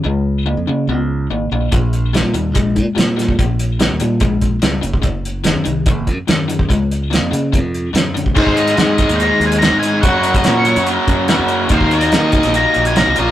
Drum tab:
CC |----------------|----------------|----------------|----------------|
HH |----------------|x-x-x-x-x-x-x-x-|x-x-x-x-x-x-x-x-|x-x-x-x-x-x-x-x-|
SD |----------------|----o-------o-o-|----o-------o---|----o-------o---|
BD |----------------|o-------o-o----o|o-------o-o----o|o-------o-o----o|

CC |----------------|x---------------|----------------|----------------|
HH |x-x-x-x-x-x-x-x-|--xxx-xxx-xxx-x-|x-xxx-xxx-x-x-x-|x-xxx-xxx-xxx-x-|
SD |----o-------o---|----o-------o---|----o-------o---|----o--o----o---|
BD |o-------o------o|oo----o---------|o--o------o-----|oo----o---------|